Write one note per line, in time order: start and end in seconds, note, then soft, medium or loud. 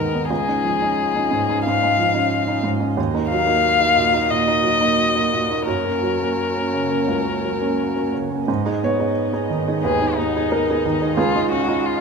0.00 0.32 D#2 soft
0.00 0.32 D#3 soft
0.00 0.33 G#3 soft
0.00 0.14 B3 soft
0.00 0.30 B3 soft
0.00 0.14 D#4 soft
0.00 0.30 D#4 soft
0.00 0.29 A#4 medium
0.00 2.96 D#5 soft
0.14 0.28 B3 soft
0.14 0.29 D#4 soft
0.30 0.46 C#2 soft
0.30 2.98 G#3 soft
0.30 2.98 F4 soft
0.30 1.62 G#4 medium
0.48 0.62 C#4 soft
0.48 0.62 D#4 soft
0.64 0.90 F3 soft
0.81 1.11 C#4 soft
0.81 1.11 D#4 soft
1.15 1.30 C#4 soft
1.15 1.30 D#4 soft
1.31 1.59 G#2 soft
1.49 1.64 C#4 soft
1.49 1.64 D#4 soft
1.65 1.83 G#2 soft
1.65 2.62 F5 medium
1.83 1.97 C#4 soft
1.83 1.98 D#4 soft
1.99 2.25 F3 soft
2.14 2.44 C#4 soft
2.14 2.44 D#4 soft
2.47 2.62 C#4 soft
2.47 2.63 D#4 soft
2.64 2.91 G#2 soft
2.80 2.95 C#4 soft
2.80 2.95 D#4 soft
2.97 3.13 D#2 medium
2.97 8.48 A#3 soft
2.97 8.48 F#4 soft
2.97 5.63 D#5 soft
3.14 3.29 A#3 soft
3.14 3.29 D#4 soft
3.29 3.58 F#3 soft
3.29 4.32 F5 medium
3.46 3.77 A#3 soft
3.46 3.77 D#4 soft
3.80 3.95 A#3 soft
3.80 3.95 D#4 soft
3.96 4.23 A#2 soft
4.13 4.29 A#3 soft
4.13 4.29 D#4 soft
4.30 4.47 A#2 soft
4.30 5.67 D#5 medium
4.47 4.62 A#3 soft
4.47 4.63 D#4 soft
4.63 4.91 F#3 soft
4.80 5.11 A#3 soft
4.80 5.12 D#4 soft
5.15 5.31 A#3 soft
5.15 5.31 D#4 soft
5.33 5.60 A#2 soft
5.50 5.66 A#3 soft
5.50 5.66 D#4 soft
5.67 5.84 F#2 soft
5.67 8.10 A#4 medium
5.67 8.49 C#5 soft
5.84 6.01 A#3 soft
5.84 6.01 C#4 soft
6.03 6.31 F#3 soft
6.21 6.53 A#3 soft
6.21 6.53 C#4 soft
6.57 6.72 A#3 soft
6.57 6.73 C#4 soft
6.74 7.02 C#3 soft
6.91 7.07 A#3 soft
6.91 7.07 C#4 soft
7.08 7.26 C#2 soft
7.27 7.43 A#3 soft
7.27 7.43 C#4 soft
7.44 7.72 F#3 soft
7.61 7.93 A#3 soft
7.61 7.93 C#4 soft
7.96 8.12 A#3 soft
7.96 8.12 C#4 soft
8.14 8.41 C#3 soft
8.31 8.47 A#3 soft
8.31 8.47 C#4 soft
8.48 8.65 G#2 medium
8.48 11.14 B3 soft
8.48 11.14 D#4 soft
8.48 12.01 D#5 medium
8.66 8.81 D#4 soft
8.66 8.81 G#4 soft
8.83 9.10 B3 soft
8.83 9.80 C#5 medium
9.00 9.30 D#4 soft
9.00 9.30 G#4 soft
9.33 9.48 D#4 soft
9.33 9.48 G#4 soft
9.50 9.77 D#3 soft
9.68 9.83 D#4 soft
9.68 9.83 G#4 soft
9.83 10.00 D#2 soft
9.83 10.18 G#4 medium
9.83 10.46 B4 medium
10.02 10.16 D#4 soft
10.02 10.17 G#4 soft
10.16 10.45 B3 soft
10.16 11.16 D#4 medium
10.36 10.65 D#4 soft
10.36 10.65 G#4 soft
10.52 11.14 A#4 medium
10.70 10.84 D#4 soft
10.70 10.84 G#4 soft
10.86 11.11 D#3 soft
11.01 11.16 D#4 soft
11.01 11.16 G#4 soft
11.17 11.34 C#2 medium
11.17 12.01 G#3 medium
11.17 11.50 F4 medium
11.17 12.01 G#4 medium
11.17 12.01 F5 medium
11.35 11.50 D#4 soft
11.35 11.50 F4 soft
11.51 11.78 C#4 soft
11.51 11.87 F#4 medium
11.68 11.98 D#4 soft
11.68 11.98 F4 medium
11.86 12.01 F4 medium